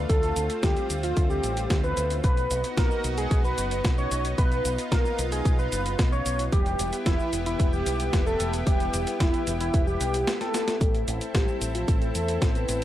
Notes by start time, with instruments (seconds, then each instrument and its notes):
Already playing: analog synth pad A3 F4
0.09 fingered electric bass D2, analog synth pad C4, analog synth lead A4, kick, closed hi-hat, cabasa
0.23 closed hi-hat, cabasa
0.36 fingered electric bass D2, closed hi-hat, cabasa
0.50 closed hi-hat, cabasa
0.63 fingered electric bass D2, analog synth lead G4, kick, snare, closed hi-hat, cabasa
0.77 closed hi-hat, cabasa
0.90 fingered electric bass D2, closed hi-hat, cabasa
1.03 analog synth lead F4, closed hi-hat, cabasa
1.17 fingered electric bass D2, kick, closed hi-hat, cabasa
1.30 analog synth lead G4, cabasa
1.44 fingered electric bass A1, closed hi-hat, cabasa
1.57 closed hi-hat, cabasa
1.70 fingered electric bass D2, kick, snare, closed hi-hat, cabasa
1.84 analog synth lead B4, cabasa
1.97 fingered electric bass D2, closed hi-hat, cabasa
2.10 closed hi-hat, cabasa
2.24 fingered electric bass B1, analog synth pad B3 D#4 F#4, analog synth lead B4, kick, closed hi-hat, cabasa
2.37 closed hi-hat, cabasa
2.51 fingered electric bass B1, closed hi-hat, cabasa
2.64 closed hi-hat, cabasa
2.77 fingered electric bass B1, analog synth lead A#4, kick, snare, closed hi-hat, cabasa
2.91 cabasa
3.04 fingered electric bass B1, closed hi-hat, cabasa
3.18 analog synth lead G#4, closed hi-hat, cabasa
3.31 fingered electric bass B1, kick, closed hi-hat, cabasa
3.44 analog synth lead B4, cabasa
3.58 fingered electric bass F#1, closed hi-hat, cabasa
3.71 closed hi-hat, cabasa
3.85 fingered electric bass B1, kick, snare, closed hi-hat, cabasa
3.98 analog synth lead C#5, cabasa
4.11 fingered electric bass B1, closed hi-hat, cabasa
4.25 closed hi-hat, cabasa
4.38 fingered electric bass B1, analog synth pad F4, analog synth lead B4, kick, closed hi-hat, cabasa
4.52 closed hi-hat, cabasa
4.65 fingered electric bass B1, closed hi-hat, cabasa
4.78 closed hi-hat, cabasa
4.92 fingered electric bass B1, analog synth lead A#4, kick, snare, closed hi-hat, cabasa
5.05 cabasa
5.19 fingered electric bass B1, closed hi-hat, cabasa
5.32 analog synth lead G#4, closed hi-hat, cabasa
5.45 fingered electric bass B1, kick, closed hi-hat, cabasa
5.59 analog synth lead B4, cabasa
5.72 fingered electric bass F#1, closed hi-hat, cabasa
5.86 closed hi-hat, cabasa
5.99 fingered electric bass B1, kick, snare, closed hi-hat, cabasa
6.12 analog synth lead C#5, cabasa
6.26 fingered electric bass B1, closed hi-hat, cabasa
6.39 closed hi-hat, cabasa
6.52 fingered electric bass E1, analog synth pad B3 E4 G4, analog synth lead G4, kick, closed hi-hat, cabasa
6.66 closed hi-hat, cabasa
6.79 fingered electric bass E1, closed hi-hat, cabasa
6.93 closed hi-hat, cabasa
7.06 fingered electric bass E1, analog synth lead E4, kick, snare, closed hi-hat, cabasa
7.19 cabasa
7.33 fingered electric bass E1, closed hi-hat, cabasa
7.46 analog synth lead E4, closed hi-hat, cabasa
7.60 fingered electric bass E1, kick, closed hi-hat, cabasa
7.73 analog synth lead G4, cabasa
7.86 fingered electric bass B1, closed hi-hat, cabasa
8.00 closed hi-hat, cabasa
8.13 fingered electric bass E1, kick, snare, closed hi-hat, cabasa
8.27 analog synth lead A4, cabasa
8.40 fingered electric bass E1, closed hi-hat, cabasa
8.53 closed hi-hat, cabasa
8.67 fingered electric bass E1, analog synth lead G4, kick, closed hi-hat, cabasa
8.80 closed hi-hat, cabasa
8.93 fingered electric bass E1, closed hi-hat, cabasa
9.07 closed hi-hat, cabasa
9.20 fingered electric bass E1, analog synth lead E4, kick, snare, closed hi-hat, cabasa
9.34 closed hi-hat, cabasa
9.47 fingered electric bass E1, closed hi-hat, cabasa
9.60 analog synth lead E4, closed hi-hat, cabasa
9.74 fingered electric bass E1, kick, closed hi-hat, cabasa
9.87 analog synth lead G4, cabasa
10.01 fingered electric bass B1, closed hi-hat, cabasa
10.14 closed hi-hat, cabasa
10.27 snare, closed hi-hat, cabasa
10.41 analog synth lead A4, snare, closed hi-hat, cabasa
10.54 snare, closed hi-hat, cabasa
10.68 snare, closed hi-hat, cabasa
10.81 fingered electric bass A1, analog synth pad C4 E4 A4, analog synth lead A4, kick, closed hi-hat, cabasa
10.95 closed hi-hat, cabasa
11.08 fingered electric bass A1, closed hi-hat, cabasa
11.21 closed hi-hat, cabasa
11.34 fingered electric bass A1, analog synth lead G4, kick, snare, closed hi-hat, cabasa
11.48 cabasa
11.61 fingered electric bass A1, closed hi-hat, cabasa
11.75 analog synth lead F4, closed hi-hat, cabasa
11.88 fingered electric bass A1, kick, closed hi-hat, cabasa
12.01 analog synth lead A4, closed hi-hat, cabasa
12.15 fingered electric bass E2, closed hi-hat, cabasa
12.28 closed hi-hat, cabasa
12.42 fingered electric bass A1, kick, snare, closed hi-hat, cabasa
12.55 analog synth lead B4, closed hi-hat, cabasa
12.69 fingered electric bass A1, closed hi-hat, cabasa